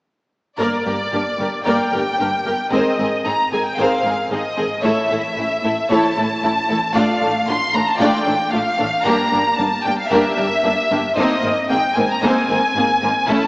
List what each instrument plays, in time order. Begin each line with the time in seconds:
0.58 double bass section G1, cello section G2, viola section A#3 A#4, violin section A#4 D5
0.85 double bass section G1, cello section G2, viola section A#3 A#4, violin section G4 A#4
1.12 double bass section G1, cello section G2, viola section A#3 A#4, violin section D4 G4
1.39 double bass section G1, cello section G2, viola section A#3 A#4, violin section G4 A#4
1.66 double bass section G1, cello section G2, viola section A#3 A#4, violin section A#4 D5 G5
1.93 double bass section G1, cello section G2, viola section A#3 A#4, violin section G4 A#4
2.20 double bass section G1, cello section G2, viola section A#3 A#4, violin section D4 G4
2.46 double bass section G1, cello section G2, viola section A#3 A#4, violin section G4 A#4
2.72 double bass section G#1, cello section G#2, viola section C4 G#4, violin section A#4 C5 D#5
2.98 double bass section G#1, cello section G#2, viola section C4 G#4, violin section G#4 A#4
3.25 double bass section G#1, cello section G#2, viola section C4 G#4, violin section D#4 G#4 A#5
3.51 double bass section G#1, cello section G#2, viola section C4 G#4, violin section G#4 A#4 G#5
3.65 violin section G5
3.78 double bass section G#1, cello section G#2, viola section C4 G#4, violin section A#4 C5 F5
4.04 double bass section G#1, cello section G#2, viola section C4 G#4, violin section G#4 A#4
4.30 double bass section G#1, cello section G#2, viola section C4 G#4, violin section D#4 G#4 D#5
4.57 double bass section G#1, cello section G#2, viola section C4 G#4, violin section G#4 A#4
4.83 double bass section A1, cello section A2, viola section A3 E4, violin section A4 C#5 E5
5.10 double bass section A1, cello section A2, viola section A3 E4, violin section E4 A4
5.36 double bass section A1, cello section A2, viola section A3 E4, violin section C#4 E4
5.63 double bass section A1, cello section A2, viola section A3 E4, violin section E4 A4
5.90 double bass section A1, cello section A2, viola section A3 E4, violin section A4 C#5 A5
6.17 double bass section A1, cello section A2, viola section A3 E4, violin section E4 A4
6.42 double bass section A1, cello section A2, viola section A3 E4, violin section C#4 E4
6.69 double bass section A1, cello section A2, viola section A3 E4, violin section E4 A4
6.94 double bass section A1, cello section A2, viola section A3 D4, violin section F4 D5 F5
7.21 double bass section A1, cello section A2, viola section A3 D4, violin section D4 A4
7.47 double bass section A1, cello section A2, violin section A3 F4 C6, viola section A3 D4
7.74 double bass section A1, cello section A2, viola section A3 D4, violin section D4 A4 A#5
7.88 violin section A5
7.99 double bass section A1, cello section A2, viola section A3 D4, violin section F4 D5 G5
8.26 double bass section A1, cello section A2, viola section A3 D4, violin section D4 A4
8.51 double bass section A1, cello section A2, violin section A3 F4 F5, viola section A3 D4
8.78 double bass section A1, cello section A2, viola section A3 D4, violin section D4 A4
9.03 double bass section G1, cello section G2, viola section A#3 D4, violin section G4 A#4 A#5
9.31 double bass section G1, cello section G2, viola section A#3 D4, violin section D4 G4
9.57 double bass section G1, cello section G2, violin section A#3 D4 A5, viola section A#3 D4
9.83 double bass section G1, cello section G2, viola section A#3 D4, violin section D4 G4 G5
9.99 violin section F5
10.11 double bass section G1, cello section G2, viola section A#3 D4, violin section G4 A#4 E5
10.37 double bass section G1, cello section G2, viola section A#3 D4, violin section D4 G4
10.63 double bass section G1, cello section G2, violin section A#3 D4, viola section A#3 D4
10.90 double bass section G1, cello section G2, viola section A#3 D4, violin section D4 G4
11.17 double bass section G#1, cello section G#2, viola section A#3 C4, violin section D#4 C5 D#5
11.43 double bass section G#1, cello section G#2, viola section A#3 C4, violin section C4 A#4
11.69 double bass section G#1, cello section G#2, viola section A#3 C4, violin section A#3 G#4 G5
11.96 double bass section G#1, cello section G#2, viola section A#3 C4, violin section C4 A#4 G#5
12.10 violin section A#5
12.23 double bass section G#1, cello section G#2, viola section A#3 C4, violin section D#4 C5 G#5
12.49 double bass section G#1, cello section G#2, viola section A#3 C4, violin section C4 A#4
12.75 double bass section G#1, cello section G#2, violin section A#3 G#4, viola section A#3 C4
13.02 double bass section G#1, cello section G#2, viola section A#3 C4, violin section C4 A#4
13.28 double bass section A1, cello section A2, viola section A3 C#4, violin section E4 A4 A5